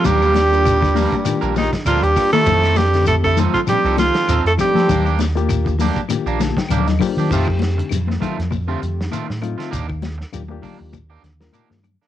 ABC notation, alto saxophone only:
X:1
M:4/4
L:1/16
Q:"Swing 16ths" 1/4=99
K:Fmix
V:1 name="Alto saxophone"
G8- G2 E2 F G2 A- | A2 G2 A A2 F G2 F3 A G2- | G2 z12 z2 | z16 |
z16 |]